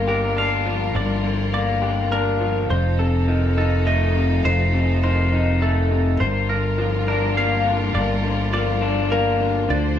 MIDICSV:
0, 0, Header, 1, 5, 480
1, 0, Start_track
1, 0, Key_signature, -2, "minor"
1, 0, Tempo, 583658
1, 782, Time_signature, 3, 2, 24, 8
1, 8217, End_track
2, 0, Start_track
2, 0, Title_t, "Clean electric guitar"
2, 0, Program_c, 0, 27
2, 0, Note_on_c, 0, 70, 52
2, 70, Note_off_c, 0, 70, 0
2, 70, Note_on_c, 0, 70, 52
2, 306, Note_off_c, 0, 70, 0
2, 314, Note_on_c, 0, 77, 58
2, 791, Note_on_c, 0, 74, 60
2, 1256, Note_off_c, 0, 74, 0
2, 1266, Note_on_c, 0, 74, 55
2, 1740, Note_off_c, 0, 74, 0
2, 1743, Note_on_c, 0, 70, 60
2, 2220, Note_off_c, 0, 70, 0
2, 2224, Note_on_c, 0, 72, 62
2, 2460, Note_on_c, 0, 69, 58
2, 2942, Note_off_c, 0, 69, 0
2, 2942, Note_on_c, 0, 69, 60
2, 3178, Note_off_c, 0, 77, 0
2, 3181, Note_off_c, 0, 69, 0
2, 3181, Note_on_c, 0, 75, 61
2, 3658, Note_off_c, 0, 75, 0
2, 3661, Note_off_c, 0, 72, 0
2, 3661, Note_on_c, 0, 72, 61
2, 4132, Note_off_c, 0, 72, 0
2, 4142, Note_on_c, 0, 72, 59
2, 4621, Note_off_c, 0, 72, 0
2, 4624, Note_on_c, 0, 69, 56
2, 5101, Note_on_c, 0, 72, 63
2, 5102, Note_off_c, 0, 69, 0
2, 5340, Note_on_c, 0, 70, 57
2, 5341, Note_off_c, 0, 72, 0
2, 5825, Note_off_c, 0, 70, 0
2, 5825, Note_on_c, 0, 70, 55
2, 6060, Note_off_c, 0, 70, 0
2, 6064, Note_on_c, 0, 77, 59
2, 6536, Note_on_c, 0, 74, 62
2, 7016, Note_off_c, 0, 74, 0
2, 7020, Note_on_c, 0, 74, 59
2, 7499, Note_on_c, 0, 70, 58
2, 7980, Note_off_c, 0, 70, 0
2, 7981, Note_off_c, 0, 74, 0
2, 7981, Note_on_c, 0, 74, 66
2, 8217, Note_off_c, 0, 74, 0
2, 8217, Note_off_c, 0, 77, 0
2, 8217, End_track
3, 0, Start_track
3, 0, Title_t, "String section"
3, 0, Program_c, 1, 48
3, 0, Note_on_c, 1, 55, 49
3, 0, Note_on_c, 1, 65, 47
3, 0, Note_on_c, 1, 70, 57
3, 2184, Note_off_c, 1, 65, 0
3, 2185, Note_off_c, 1, 55, 0
3, 2186, Note_off_c, 1, 70, 0
3, 2209, Note_on_c, 1, 53, 57
3, 2213, Note_on_c, 1, 63, 49
3, 2215, Note_on_c, 1, 69, 58
3, 5065, Note_off_c, 1, 53, 0
3, 5068, Note_off_c, 1, 63, 0
3, 5069, Note_off_c, 1, 69, 0
3, 5087, Note_on_c, 1, 65, 52
3, 5087, Note_on_c, 1, 70, 59
3, 5090, Note_on_c, 1, 55, 52
3, 7946, Note_off_c, 1, 65, 0
3, 7946, Note_off_c, 1, 70, 0
3, 7947, Note_off_c, 1, 55, 0
3, 7972, Note_on_c, 1, 62, 55
3, 7979, Note_on_c, 1, 72, 68
3, 7982, Note_on_c, 1, 53, 56
3, 8217, Note_off_c, 1, 53, 0
3, 8217, Note_off_c, 1, 62, 0
3, 8217, Note_off_c, 1, 72, 0
3, 8217, End_track
4, 0, Start_track
4, 0, Title_t, "Clean electric guitar"
4, 0, Program_c, 2, 27
4, 0, Note_on_c, 2, 43, 52
4, 0, Note_on_c, 2, 50, 45
4, 0, Note_on_c, 2, 58, 48
4, 61, Note_on_c, 2, 67, 52
4, 298, Note_on_c, 2, 62, 49
4, 539, Note_off_c, 2, 43, 0
4, 540, Note_on_c, 2, 53, 45
4, 772, Note_on_c, 2, 43, 52
4, 781, Note_off_c, 2, 50, 0
4, 1014, Note_on_c, 2, 50, 47
4, 1021, Note_off_c, 2, 58, 0
4, 1260, Note_off_c, 2, 67, 0
4, 1262, Note_on_c, 2, 58, 52
4, 1495, Note_on_c, 2, 67, 51
4, 1499, Note_off_c, 2, 62, 0
4, 1743, Note_on_c, 2, 62, 48
4, 1975, Note_off_c, 2, 53, 0
4, 1976, Note_off_c, 2, 43, 0
4, 1979, Note_on_c, 2, 53, 51
4, 2217, Note_off_c, 2, 50, 0
4, 2217, Note_off_c, 2, 67, 0
4, 2220, Note_on_c, 2, 41, 52
4, 2221, Note_off_c, 2, 58, 0
4, 2222, Note_off_c, 2, 62, 0
4, 2462, Note_on_c, 2, 48, 45
4, 2695, Note_off_c, 2, 53, 0
4, 2698, Note_on_c, 2, 51, 52
4, 2936, Note_on_c, 2, 63, 53
4, 3169, Note_on_c, 2, 57, 54
4, 3411, Note_off_c, 2, 48, 0
4, 3420, Note_off_c, 2, 41, 0
4, 3421, Note_on_c, 2, 48, 49
4, 3665, Note_on_c, 2, 41, 57
4, 3887, Note_off_c, 2, 48, 0
4, 3897, Note_on_c, 2, 48, 46
4, 3899, Note_off_c, 2, 51, 0
4, 4138, Note_off_c, 2, 63, 0
4, 4143, Note_on_c, 2, 51, 50
4, 4374, Note_off_c, 2, 57, 0
4, 4378, Note_on_c, 2, 63, 52
4, 4619, Note_on_c, 2, 57, 48
4, 4854, Note_off_c, 2, 48, 0
4, 4863, Note_off_c, 2, 41, 0
4, 4864, Note_on_c, 2, 48, 48
4, 5099, Note_off_c, 2, 57, 0
4, 5099, Note_off_c, 2, 63, 0
4, 5101, Note_on_c, 2, 43, 52
4, 5102, Note_off_c, 2, 48, 0
4, 5102, Note_off_c, 2, 51, 0
4, 5344, Note_on_c, 2, 50, 46
4, 5577, Note_on_c, 2, 53, 51
4, 5817, Note_on_c, 2, 62, 52
4, 6061, Note_on_c, 2, 58, 50
4, 6287, Note_off_c, 2, 50, 0
4, 6296, Note_on_c, 2, 50, 50
4, 6301, Note_off_c, 2, 43, 0
4, 6531, Note_on_c, 2, 43, 58
4, 6757, Note_off_c, 2, 50, 0
4, 6767, Note_on_c, 2, 50, 49
4, 7013, Note_off_c, 2, 53, 0
4, 7016, Note_on_c, 2, 53, 52
4, 7249, Note_off_c, 2, 62, 0
4, 7252, Note_on_c, 2, 62, 57
4, 7261, Note_off_c, 2, 58, 0
4, 7493, Note_on_c, 2, 58, 52
4, 7721, Note_off_c, 2, 50, 0
4, 7731, Note_on_c, 2, 50, 53
4, 7736, Note_off_c, 2, 43, 0
4, 7957, Note_off_c, 2, 50, 0
4, 7967, Note_on_c, 2, 50, 59
4, 7977, Note_off_c, 2, 58, 0
4, 8203, Note_off_c, 2, 53, 0
4, 8217, Note_off_c, 2, 50, 0
4, 8217, Note_off_c, 2, 62, 0
4, 8217, End_track
5, 0, Start_track
5, 0, Title_t, "Fingered electric bass"
5, 0, Program_c, 3, 33
5, 0, Note_on_c, 3, 31, 54
5, 751, Note_off_c, 3, 31, 0
5, 779, Note_on_c, 3, 31, 55
5, 2190, Note_off_c, 3, 31, 0
5, 2223, Note_on_c, 3, 29, 56
5, 3632, Note_off_c, 3, 29, 0
5, 3660, Note_on_c, 3, 29, 54
5, 5071, Note_off_c, 3, 29, 0
5, 5103, Note_on_c, 3, 31, 58
5, 6513, Note_off_c, 3, 31, 0
5, 6537, Note_on_c, 3, 31, 55
5, 7951, Note_off_c, 3, 31, 0
5, 7978, Note_on_c, 3, 38, 62
5, 8217, Note_off_c, 3, 38, 0
5, 8217, End_track
0, 0, End_of_file